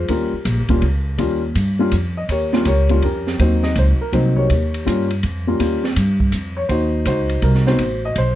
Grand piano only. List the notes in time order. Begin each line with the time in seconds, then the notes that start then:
0.09 G3 A#3 C#4 F4 G4 A#4
0.69 G3 A#3 C#4 F4
1.18 G3 A#3 C#4 F4
1.79 G3 A#3 C#4 F4
2.17 D#5
2.30 G4 A#4 C#5
2.53 G3 A#3 C#4 F4
2.67 G4 A#4 C#5
2.89 G3 A#3 C#4 F4
3.03 C#4 G4 A#4
3.39 F#3 A#3 C4 D#4 F#4 C5
3.64 D#5
3.79 C5
4.01 A#4
4.13 F#3 A#3 C4 D#4 C5
4.36 G4 A#4 C#5
4.85 G3 A#3 C#4 F4
5.47 G3 A#3 C#4 F4
5.60 G3 A#3 C#4 F4
6.57 C#5
6.69 D#4 F#4 C5
7.07 D#4 F#4 C5
7.43 A#4
7.67 B3 C4 D#4 F#4 C5
8.05 D#5
8.18 C5